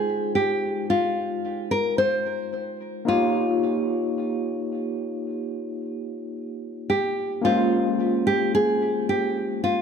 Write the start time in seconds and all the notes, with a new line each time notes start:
Already playing: G#3 D#4 F4 G#4 C5 G5
0.35 G4
0.90 F4
1.71 A#4
1.98 C5
3.05 A#3 D#4 F4 G4
3.10 C#5
6.90 G4
7.42 G#3 A#3 C#4 F4
7.46 C5
8.27 G4
8.55 G#4
9.09 G4
9.64 F4